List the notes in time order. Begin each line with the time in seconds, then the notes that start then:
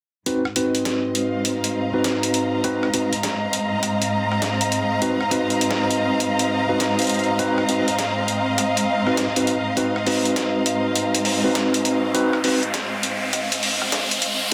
0.26 G#2 C4 D#4 F#4 B4, closed hi-hat
0.45 cross-stick
0.56 C4 D#4 F#4 B4 D#5, closed hi-hat
0.75 closed hi-hat
0.85 snare, closed hi-hat
1.15 F5, closed hi-hat
1.45 A#5, closed hi-hat
1.64 closed hi-hat
1.94 C4 D#4 F#4 B4
2.04 snare, closed hi-hat
2.23 closed hi-hat
2.34 closed hi-hat
2.64 C4 D#4 F#4 B4, closed hi-hat
2.83 cross-stick
2.94 C4 D#4 F#4 B4, closed hi-hat
3.13 closed hi-hat
3.23 snare, closed hi-hat
3.53 closed hi-hat
3.83 cross-stick, closed hi-hat
4.02 closed hi-hat
4.32 cross-stick
4.42 snare, closed hi-hat
4.61 closed hi-hat
4.72 closed hi-hat
5.02 C4 D#4 F#4 B4, closed hi-hat
5.21 cross-stick
5.31 C4 D#4 F#4 B4, closed hi-hat
5.50 closed hi-hat
5.61 closed hi-hat
5.71 snare
5.91 closed hi-hat
6.20 closed hi-hat
6.39 closed hi-hat
6.69 C4 D#4 F#4 B4
6.80 snare, closed hi-hat
6.99 closed hi-hat
7.02 closed hi-hat
7.04 closed hi-hat
7.07 closed hi-hat
7.09 closed hi-hat
7.14 closed hi-hat
7.19 closed hi-hat
7.24 closed hi-hat
7.39 C4 D#4 F#4 B4, closed hi-hat
7.58 cross-stick
7.69 C4 D#4 F#4 B4, closed hi-hat
7.88 closed hi-hat
7.99 snare, closed hi-hat
8.28 closed hi-hat
8.58 cross-stick, closed hi-hat
8.77 closed hi-hat
9.07 C4 D#4 F#4 B4, cross-stick
9.17 snare, closed hi-hat
9.36 C4 D#4 F#4 B4, closed hi-hat
9.47 closed hi-hat
9.77 C4 D#4 F#4 B4, closed hi-hat, riser
9.96 cross-stick
10.07 C4 D#4 F#4 B4, open hi-hat
10.25 closed hi-hat
10.36 snare, closed hi-hat
10.66 closed hi-hat
10.96 closed hi-hat
11.15 closed hi-hat
11.25 open hi-hat
11.44 C4 D#4 F#4 B4
11.55 snare, closed hi-hat
11.74 closed hi-hat
11.85 closed hi-hat
12.14 C4 D#4 F#4 B4, closed hi-hat
12.33 cross-stick
12.44 C4 D#4 F#4 B4, open hi-hat
12.63 closed hi-hat
12.74 snare, closed hi-hat
13.03 closed hi-hat
13.33 cross-stick, closed hi-hat
13.52 closed hi-hat
13.63 open hi-hat
13.82 cross-stick
13.92 snare, closed hi-hat
14.11 closed hi-hat
14.22 closed hi-hat